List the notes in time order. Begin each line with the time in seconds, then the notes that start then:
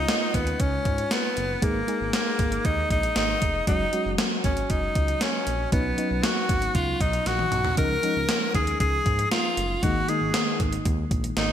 Already playing: G#3 C#4 D#4 F4
0.08 snare, closed hi-hat
0.34 D#2 B3, kick, closed hi-hat
0.47 closed hi-hat
0.60 C#2 C#4, kick, closed hi-hat
0.85 G#2, kick, closed hi-hat
0.98 closed hi-hat
1.11 B3, snare, closed hi-hat
1.37 F#1, closed hi-hat
1.62 G#1 G#3 A#3 D#4 G#4, kick, closed hi-hat
1.87 G#3 A#3 D#4 G#4, closed hi-hat
2.01 G#1
2.13 A#3, snare, closed hi-hat
2.39 G#1, kick, closed hi-hat
2.52 closed hi-hat
2.65 D#2 D#4, kick, closed hi-hat
2.90 A#1 D#4, kick, closed hi-hat
3.03 closed hi-hat
3.16 G#1 D#4, snare, closed hi-hat
3.42 F1, kick, closed hi-hat
3.67 F#1 F#3 G#3 C#4 D#4 F#4, kick, closed hi-hat
3.92 F#3 G#3 C#4 F#4, closed hi-hat
4.06 F#1
4.18 snare, closed hi-hat
4.44 G#1 C#4, kick, closed hi-hat
4.57 closed hi-hat
4.70 F#1 D#4, kick, closed hi-hat
4.95 C#2, kick, closed hi-hat
5.08 closed hi-hat
5.21 C#4, snare, closed hi-hat
5.47 A#1, closed hi-hat
5.72 B1 F#3 B3 C#4 D#4, kick, closed hi-hat
5.97 F#3 B3 C#4 D#4, closed hi-hat
6.11 B1
6.24 F#4, snare, closed hi-hat
6.49 G#1, kick, closed hi-hat
6.62 closed hi-hat
6.75 C#2 F4, kick, closed hi-hat
7.01 B1 D#4, kick, closed hi-hat
7.13 closed hi-hat
7.26 A#1 F#4, snare, closed hi-hat
7.39 high tom
7.52 B1, closed hi-hat, mid tom
7.65 floor tom
7.77 C#2 F3 G#3 C#4 D#4 A#4, kick, closed hi-hat
8.03 F3 G#3 C#4 D#4, closed hi-hat
8.16 C#2
8.29 snare, closed hi-hat
8.55 D#2 G#4, kick, closed hi-hat
8.67 closed hi-hat
8.80 C#2 G#4, kick, closed hi-hat
9.06 G#2, kick, closed hi-hat
9.19 closed hi-hat
9.31 F4, snare, closed hi-hat
9.57 F#1, closed hi-hat
9.83 G#1 D#3 G#3 A#3 D#4 F#4, kick, closed hi-hat
10.08 D#3 G#3 A#3 D#4 G#4, closed hi-hat
10.21 G#1
10.34 snare, closed hi-hat
10.60 G#1, kick, closed hi-hat
10.73 closed hi-hat
10.85 D#2, kick, closed hi-hat
11.11 A#1, kick, closed hi-hat
11.24 closed hi-hat
11.37 G#1 D#4, snare, closed hi-hat